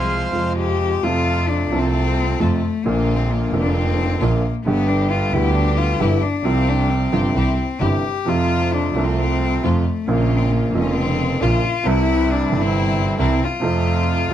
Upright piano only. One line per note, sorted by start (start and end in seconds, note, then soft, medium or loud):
0.00 0.30 C2 medium
0.00 0.29 C3 medium
0.00 0.30 F3 soft
0.00 0.30 G#3 medium
0.00 0.31 F4 medium
0.31 1.00 F2 medium
0.31 0.99 C3 medium
0.31 1.00 F3 medium
0.31 1.00 G#3 medium
0.31 1.00 F4 medium
1.03 1.69 F2 medium
1.03 1.68 C3 medium
1.03 1.69 F3 medium
1.03 1.69 A3 medium
1.03 1.70 F4 medium
1.70 2.37 C2 medium
1.70 2.37 C3 medium
1.70 2.37 F3 medium
1.70 2.38 A3 medium
1.70 2.38 F4 medium
2.39 2.59 F2 medium
2.39 2.59 C3 medium
2.39 2.59 F3 medium
2.39 2.59 A3 medium
2.39 2.59 F4 medium
2.84 3.50 A#1 medium
2.84 3.50 A#2 medium
2.84 3.49 D3 medium
2.84 3.50 F3 medium
2.84 3.51 A#3 medium
2.88 3.51 F4 medium
3.51 4.18 F1 medium
3.51 4.18 F2 medium
3.51 4.17 D3 medium
3.51 4.18 F3 medium
3.51 4.18 A#3 medium
3.56 4.19 F4 medium
4.21 4.41 A#1 medium
4.21 4.41 A#2 medium
4.21 4.40 D3 medium
4.21 4.40 F3 medium
4.21 4.41 A#3 medium
4.21 4.41 F4 medium
4.65 5.31 G1 medium
4.65 5.30 G2 medium
4.65 5.29 D3 medium
4.65 5.30 G3 medium
4.65 5.31 B3 medium
4.65 5.31 G4 medium
5.32 5.98 D2 medium
5.32 5.98 D3 medium
5.32 5.98 G3 medium
5.32 5.98 B3 medium
5.32 5.98 G4 medium
6.00 6.20 G1 medium
6.00 6.20 G2 medium
6.00 6.19 D3 medium
6.00 6.20 G3 medium
6.00 6.19 B3 medium
6.00 6.19 G4 medium
6.45 7.09 C2 medium
6.45 7.09 C3 medium
6.45 7.09 F3 medium
6.45 7.10 G3 medium
6.45 7.10 F4 medium
7.12 7.32 G1 medium
7.12 7.32 G2 medium
7.12 7.32 C3 medium
7.12 7.32 F3 medium
7.12 7.32 G3 medium
7.12 7.32 F4 medium
7.34 7.54 C2 medium
7.34 7.55 C3 medium
7.34 7.54 E3 soft
7.34 7.55 G3 medium
7.34 7.55 E4 medium
7.81 8.01 G1 medium
7.81 8.01 G2 medium
7.81 8.01 C3 medium
7.81 8.01 E3 medium
7.81 8.01 G3 soft
7.81 8.01 E4 medium
8.25 8.92 F2 medium
8.25 8.91 C3 medium
8.25 8.92 F3 medium
8.25 8.92 A3 medium
8.25 8.93 F4 medium
8.94 9.60 C2 medium
8.94 9.60 C3 medium
8.94 9.60 F3 medium
8.94 9.60 A3 medium
8.98 9.61 F4 medium
9.63 9.82 F2 medium
9.63 9.82 C3 medium
9.63 9.82 F3 medium
9.63 9.82 A3 medium
9.63 9.82 F4 medium
10.06 10.71 A#1 medium
10.06 10.71 A#2 medium
10.06 10.70 C#3 medium
10.06 10.71 F3 medium
10.06 10.72 A#3 medium
10.06 10.72 F4 medium
10.72 11.38 F1 medium
10.72 11.38 F2 medium
10.72 11.37 C#3 medium
10.72 11.38 F3 medium
10.72 11.38 A#3 medium
10.77 11.39 F4 medium
11.42 11.60 A#1 medium
11.42 11.60 A#2 medium
11.42 11.60 C#3 medium
11.42 11.60 F3 medium
11.42 11.60 A#3 medium
11.42 11.60 F4 medium
11.83 12.49 C2 medium
11.83 11.85 C3 medium
11.83 12.49 C3 loud
11.83 12.49 E3 medium
11.83 12.49 G3 medium
11.88 12.50 E4 medium
12.50 13.16 G1 medium
12.50 13.16 G2 medium
12.50 13.15 C3 medium
12.50 13.15 E3 medium
12.50 13.16 G3 medium
12.50 13.17 E4 medium
13.19 13.38 C2 medium
13.19 13.38 C3 medium
13.19 13.38 E3 medium
13.19 13.38 G3 medium
13.19 13.38 E4 medium
13.60 14.27 F2 medium
13.60 14.26 C3 medium
13.60 14.27 F3 medium
13.60 14.27 A3 medium
13.64 14.28 F4 medium
14.30 14.34 C3 medium